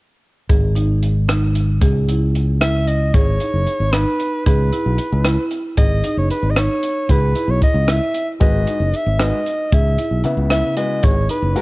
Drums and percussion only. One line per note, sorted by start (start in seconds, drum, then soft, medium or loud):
0.49 kick medium
0.49 closed hi-hat medium
0.76 closed hi-hat soft
1.03 closed hi-hat soft
1.29 cross-stick medium
1.29 closed hi-hat medium
1.56 closed hi-hat medium
1.82 kick medium
1.82 closed hi-hat medium
2.09 closed hi-hat medium
2.35 closed hi-hat soft
2.61 cross-stick loud
2.61 closed hi-hat medium
2.88 closed hi-hat soft
3.14 kick medium
3.14 closed hi-hat medium
3.40 closed hi-hat medium
3.67 closed hi-hat soft
3.93 cross-stick medium
3.93 closed hi-hat medium
4.20 closed hi-hat soft
4.46 kick medium
4.46 closed hi-hat medium
4.73 closed hi-hat medium
4.98 closed hi-hat medium
5.24 cross-stick medium
5.24 closed hi-hat medium
5.51 closed hi-hat soft
5.77 kick medium
5.77 closed hi-hat medium
6.04 closed hi-hat medium
6.30 closed hi-hat soft
6.56 cross-stick loud
6.56 closed hi-hat medium
6.83 closed hi-hat medium
7.09 kick medium
7.09 closed hi-hat medium
7.35 closed hi-hat soft
7.62 kick medium
7.62 closed hi-hat soft
7.88 cross-stick medium
7.88 closed hi-hat medium
8.14 closed hi-hat soft
8.40 kick medium
8.40 closed hi-hat medium
8.67 closed hi-hat medium
8.94 closed hi-hat soft
9.19 cross-stick medium
9.19 closed hi-hat medium
9.46 closed hi-hat soft
9.72 kick medium
9.72 closed hi-hat medium
9.98 closed hi-hat medium
10.24 closed hi-hat soft
10.50 cross-stick medium
10.50 closed hi-hat medium
10.77 closed hi-hat soft
11.03 kick medium
11.03 closed hi-hat medium
11.29 closed hi-hat medium
11.56 closed hi-hat soft